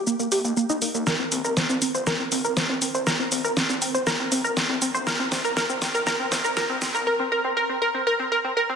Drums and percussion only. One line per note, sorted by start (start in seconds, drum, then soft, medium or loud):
0.07 shaker soft
0.20 shaker soft
0.32 open hi-hat loud
0.32 shaker medium
0.45 shaker soft
0.57 shaker soft
0.70 shaker soft
0.82 open hi-hat loud
0.82 shaker medium
0.95 shaker soft
1.07 snare medium
1.07 shaker soft
1.32 open hi-hat loud
1.32 shaker medium
1.45 shaker soft
1.57 snare soft
1.57 shaker soft
1.70 shaker soft
1.82 open hi-hat loud
1.82 shaker medium
1.95 shaker soft
2.07 snare medium
2.07 shaker soft
2.32 open hi-hat loud
2.32 shaker medium
2.45 shaker soft
2.57 snare medium
2.57 shaker soft
2.82 open hi-hat loud
2.82 shaker medium
2.95 shaker soft
3.07 snare medium
3.07 shaker soft
3.32 open hi-hat loud
3.32 shaker medium
3.45 shaker soft
3.57 snare medium
3.57 shaker soft
3.70 shaker soft
3.82 open hi-hat loud
3.82 shaker medium
3.95 shaker soft
4.07 snare medium
4.07 shaker soft
4.32 open hi-hat loud
4.32 shaker medium
4.45 shaker soft
4.57 snare medium
4.57 shaker soft
4.82 open hi-hat loud
4.82 shaker medium
4.95 shaker soft
5.07 snare medium
5.07 shaker soft
5.32 snare medium
5.32 open hi-hat loud
5.32 shaker medium
5.45 shaker soft
5.57 snare medium
5.57 shaker soft
5.70 shaker soft
5.82 snare medium
5.82 open hi-hat loud
5.82 shaker medium
5.95 shaker soft
6.07 snare medium
6.07 shaker soft
6.32 snare medium
6.32 open hi-hat loud
6.32 shaker medium
6.45 shaker soft
6.57 snare medium
6.57 shaker soft
6.82 snare medium
6.82 open hi-hat loud
6.82 shaker medium
6.95 shaker soft